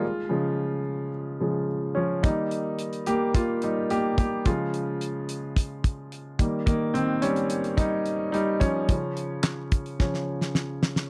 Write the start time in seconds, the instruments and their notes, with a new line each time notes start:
Already playing: grand piano G#3 F4
0.29 grand piano C#3 F3 G#3
1.40 grand piano C#3 F3 G#3
1.95 grand piano F3 C#4
2.23 grand piano D#3 G3 A#3 D#4, kick, closed hi-hat
2.51 closed hi-hat
2.79 closed hi-hat
2.93 closed hi-hat
3.06 grand piano A#3 G4, closed hi-hat
3.35 grand piano A#3 F4, kick, closed hi-hat
3.62 grand piano G3 D#4, closed hi-hat
3.90 grand piano A#3 G4, closed hi-hat
4.18 grand piano A#3 G4, kick, closed hi-hat
4.45 grand piano C#3 F3 G#3 F4, kick, closed hi-hat
4.74 closed hi-hat
5.01 closed hi-hat
5.29 closed hi-hat
5.56 kick, closed hi-hat
5.84 kick, closed hi-hat
6.12 closed hi-hat
6.39 grand piano D#3 G3 A#3, kick, closed hi-hat
6.66 grand piano D#3 A#3, kick, closed hi-hat
6.94 grand piano D#3 C4, closed hi-hat
7.22 grand piano G3 C#4, closed hi-hat
7.36 closed hi-hat
7.50 closed hi-hat
7.64 closed hi-hat
7.77 grand piano G3 D#4, kick, closed hi-hat
8.06 closed hi-hat
8.32 grand piano G3 D#4, closed hi-hat
8.60 grand piano F3 C#4, kick, closed hi-hat
8.89 grand piano C#3 F3 C#4, kick, closed hi-hat
9.17 closed hi-hat
9.44 snare, clap, closed hi-hat
9.72 kick, closed hi-hat
9.86 closed hi-hat
9.99 grand piano C#3 F3 C#4, kick, snare
10.14 snare
10.41 snare
10.55 snare
10.83 snare
10.96 snare